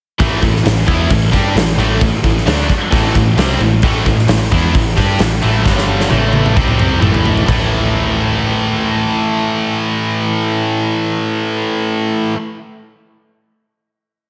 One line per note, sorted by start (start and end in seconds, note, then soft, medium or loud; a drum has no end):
0.19 0.41 A1 medium
0.19 0.41 A2 medium
0.19 0.41 E3 medium
0.19 0.42 A3 loud
0.19 kick loud
0.19 crash medium
0.42 0.64 A1 medium
0.42 0.61 A2 medium
0.42 0.61 E3 medium
0.42 kick medium
0.42 crash medium
0.56 snare soft
0.65 0.86 A1 medium
0.65 0.83 A2 medium
0.65 0.83 E3 medium
0.65 snare loud
0.65 crash medium
0.86 1.09 E2 medium
0.86 1.09 E3 medium
0.86 1.10 B3 medium
0.86 1.09 E4 loud
0.86 kick medium
0.86 crash medium
1.10 1.32 A1 medium
1.10 1.28 A2 medium
1.10 1.29 E3 medium
1.10 kick loud
1.10 crash medium
1.32 1.54 G2 medium
1.32 1.55 G3 medium
1.32 1.55 D4 medium
1.32 1.55 G4 medium
1.32 kick medium
1.32 crash medium
1.54 1.76 A1 medium
1.54 1.75 A2 medium
1.54 1.75 E3 medium
1.54 snare loud
1.54 crash medium
1.78 1.99 A1 medium
1.78 2.01 A2 medium
1.78 2.01 E3 medium
1.78 2.01 A3 loud
1.78 crash medium
2.01 2.23 A1 medium
2.01 2.20 A2 medium
2.01 2.20 E3 medium
2.01 kick loud
2.01 crash medium
2.24 2.45 A1 medium
2.24 2.43 A2 medium
2.24 2.43 E3 medium
2.24 kick medium
2.24 crash medium
2.37 snare soft
2.46 2.68 D2 loud
2.46 2.69 D3 loud
2.46 2.69 A3 loud
2.46 2.70 D4 loud
2.46 snare loud
2.46 crash medium
2.70 muted picked electric bass stroke soft
2.70 muted distorted electric guitar stroke medium
2.70 kick medium
2.70 crash medium
2.92 3.14 A1 medium
2.92 3.14 A2 loud
2.92 3.14 E3 loud
2.92 3.16 A3 loud
2.92 kick loud
2.92 crash medium
3.15 3.36 A1 medium
3.15 3.34 A2 medium
3.15 3.34 E3 medium
3.15 kick medium
3.15 crash medium
3.37 3.59 C2 loud
3.37 3.60 C3 medium
3.37 3.61 G3 loud
3.37 3.61 C4 medium
3.37 snare loud
3.37 crash medium
3.59 3.81 A1 medium
3.59 3.79 A2 medium
3.59 3.79 E3 medium
3.59 crash medium
3.82 4.05 A1 loud
3.82 4.04 A2 medium
3.82 4.04 E3 medium
3.82 4.06 A3 loud
3.82 kick loud
3.82 crash medium
4.05 4.27 A1 medium
4.05 4.24 A2 medium
4.05 4.24 E3 medium
4.05 kick medium
4.05 crash medium
4.19 snare soft
4.28 4.50 A1 medium
4.28 4.47 A2 medium
4.28 4.47 E3 medium
4.28 snare loud
4.28 crash medium
4.52 4.74 E2 medium
4.52 4.74 E3 medium
4.52 4.74 B3 loud
4.52 4.74 E4 loud
4.52 kick medium
4.52 crash medium
4.74 4.96 A1 medium
4.74 4.93 A2 medium
4.74 4.93 E3 medium
4.74 kick loud
4.74 crash medium
4.96 5.18 G2 medium
4.96 5.19 G3 medium
4.96 5.20 D4 medium
4.96 5.20 G4 medium
4.96 kick medium
4.96 snare soft
4.96 crash medium
5.19 5.41 A1 medium
5.19 5.39 A2 medium
5.19 5.39 E3 medium
5.19 snare loud
5.19 crash medium
5.42 5.64 A1 loud
5.42 5.65 A2 medium
5.42 5.65 E3 medium
5.42 5.65 A3 medium
5.42 crash medium
5.64 6.08 G1 loud
5.64 6.10 G2 medium
5.64 6.09 D3 loud
5.64 6.09 G3 loud
5.64 kick loud
5.64 snare medium
5.78 snare medium
6.01 snare medium
6.09 6.54 A1 medium
6.09 6.55 A2 medium
6.09 6.56 E3 loud
6.09 6.57 A3 loud
6.09 high tom medium
6.33 high tom medium
6.46 mid tom medium
6.55 6.99 C2 loud
6.55 7.00 C3 medium
6.55 7.01 G3 loud
6.55 7.01 C4 loud
6.55 kick loud
6.68 mid tom medium
6.79 mid tom loud
7.00 7.44 A1 loud
7.00 7.44 A2 medium
7.00 7.46 E3 medium
7.00 7.47 A3 loud
7.00 mid tom loud
7.14 floor tom medium
7.25 floor tom loud
7.38 floor tom medium
7.45 12.33 A1 loud
7.45 12.33 A2 loud
7.45 12.36 E3 loud
7.45 kick loud
7.45 crash medium
7.50 12.38 A3 medium